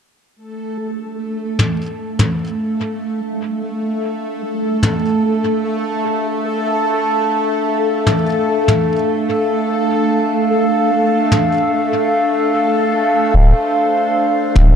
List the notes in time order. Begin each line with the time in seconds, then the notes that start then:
0.36 A3 D4 A4
0.81 A4
1.59 mid tom
1.86 F5
2.19 mid tom
2.51 E5
4.83 mid tom
8.07 mid tom
8.68 mid tom
11.32 mid tom
13.34 D1 C5
13.58 D5
14.55 D1, mid tom